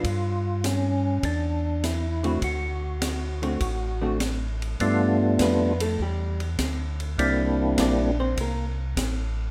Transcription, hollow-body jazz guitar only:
X:1
M:4/4
L:1/8
Q:"Swing" 1/4=101
K:Ddor
V:1 name="Hollow-body jazz guitar"
z6 z [D,A,C^F] | z3 [D,A,C^F] z [D,A,CF] z2 | z2 [B,B] [A,A] [G,G] z3 | z2 [Dd] [Cc] [_B,_B] z3 |]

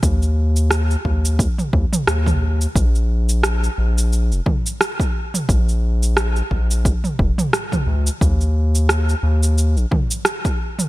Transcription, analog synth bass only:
X:1
M:4/4
L:1/16
Q:"Swing 16ths" 1/4=88
K:Eblyd
V:1 name="Analog synth bass" clef=bass
E,,4- E,, z E,,2 z2 E,, z E,,3 z | B,,,4- B,,, z B,,,3 F,,, z6 | B,,,4- B,,, z B,,,2 z2 F,,, z3 D,, z | E,,4- E,, z E,,3 B,,, z6 |]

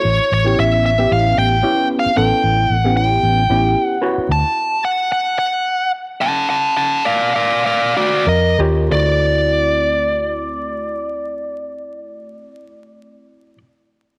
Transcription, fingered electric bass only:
X:1
M:4/4
L:1/16
Q:"Swing 16ths" 1/4=106
K:Dmix
V:1 name="Fingered electric bass" clef=bass
A,,, z A,,,2 A,,,4 A,,,2 A,,,2 z4 | A,,, z A,,,2 A,,,4 A,,,2 A,,,2 z4 | D,, z12 z3 | z12 =F,,2 _E,,2 |
D,,16- | D,,16 |]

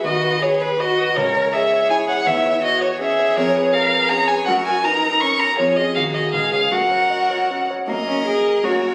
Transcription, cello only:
X:1
M:3/4
L:1/8
Q:1/4=162
K:C#dor
V:1 name="Cello"
F2 G2 F2 | A2 G4 | E2 F2 G2- | [K:F#] G2 A2 G2 |
F2 D2 C2 | E2 G4 | F4- F z | A, C G2 F2 |]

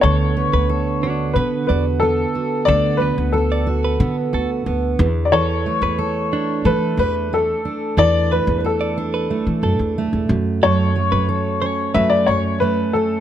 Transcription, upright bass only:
X:1
M:4/4
L:1/16
Q:1/4=91
K:D
V:1 name="Upright bass" clef=bass
D,,3 D,,4- D,, D,2 E,,4 z2 | D,,3 D,,4- D,, D,2 D,,2 D,,2 E,,2- | E,,3 E,,4- E,, E,2 E,,4 z2 | E,,3 E,,4- E,, z E, F,, E,,2 E,, F,,2- |
F,,3 F,,4- F,, F,2 F,,4 z2 |]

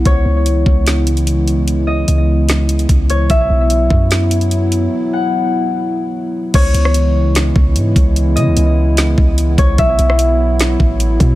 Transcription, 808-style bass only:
X:1
M:4/4
L:1/16
Q:1/4=148
K:C#m
V:1 name="808-style bass" clef=bass
C,,2 C,,4 C,,8- C,,2- | C,,4 C,,8 C,,4 | B,,,2 B,,,4 F,,8- F,,2 | z16 |
C,,2 C,,8 C,,2 G,,2 C,,2- | C,,2 C, C,, C,,6 C,,4 C,,2 | B,,,2 B,,,8 A,,,4 B,,2 |]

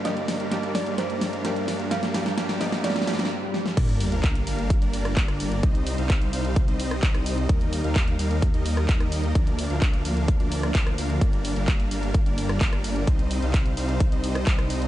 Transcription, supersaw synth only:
X:1
M:4/4
L:1/16
Q:1/4=129
K:Cm
V:1 name="Supersaw synth"
[G,B,DBd]3 [G,B,DBf] [G,B,DBd]3 [G,B,DBf] [G,B,DBd]3 [G,B,DBf] [G,B,DBd]3 [G,B,DBf] | [G,B,DBd]2 [G,B,DBd]2 [G,B,DBd]2 [G,B,DBd]2 [G,B,DBd]2 [G,B,DBd]2 z4 | [G,B,DBd]3 [G,B,DBf]3 [G,B,DBf]2 z [G,B,DBd]3 [G,B,DBd]4 | [G,CEce]3 [G,CEcf]3 [G,CEcf]2 z [G,CEce]3 [G,CEce]4 |
[G,B,EBe]3 [G,B,EBf]3 [G,B,EBf]2 z [G,B,EBe]3 [G,B,EBe]4 | [F,B,DBd]3 [F,B,DBf]3 [F,B,DBf]2 z [F,B,DBd]3 [F,B,DBc]2 [F,B,DBf]2 | [G,B,DBd]3 [G,B,DBf]3 [G,B,DBf]2 z [G,B,DBd]3 [G,B,DBd]4 | [G,CEce]3 [G,CEcf]3 [G,CEcf]2 z [G,CEce]3 [G,CEce]4 |]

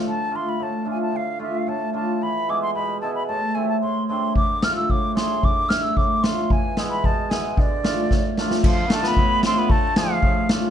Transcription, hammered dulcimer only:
X:1
M:2/4
L:1/16
Q:1/4=112
K:none
V:1 name="Hammered dulcimer"
z2 [A,DF] z3 [A,DF] z | z2 [A,DF] z3 [A,DF] z | z2 [^G,B,E] z3 [G,B,E] z | z2 [A,CE] z3 [A,CD] z |
z2 [A,DF] z3 [A,D^G] z | z2 [A,DE] z3 [A,DF] z | z2 [^G,B,E] z3 [G,B,E] z | z2 [A,DF] z3 [A,DF] z |
z2 [A,DF] z3 [A,DF] z | z2 [A,D^G] z3 [A,DF] z |]
V:2 name="Hammered dulcimer" clef=bass
D,4 A,,4 | D,4 A,,4 | E,4 B,,4 | A,,4 A,,4 |
D,4 A,,4 | D,4 A,,4 | E,4 B,,4 | D,4 A,,4 |
D,4 A,,4 | D,4 A,,4 |]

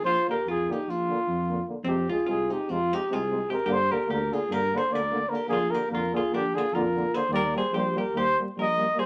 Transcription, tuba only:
X:1
M:9/8
L:1/8
Q:3/8=99
K:Bbmix
V:1 name="Tuba" clef=bass
B,,, z F,,2 B,,,2 F,,3 | F,,2 C,,2 F,,2 C,,3 | G,,2 D,,2 G,,2 D,,3 | B,,,2 F,,2 B,,,2 F,,3 |
E,,2 B,,,2 E,,2 B,,,3 |]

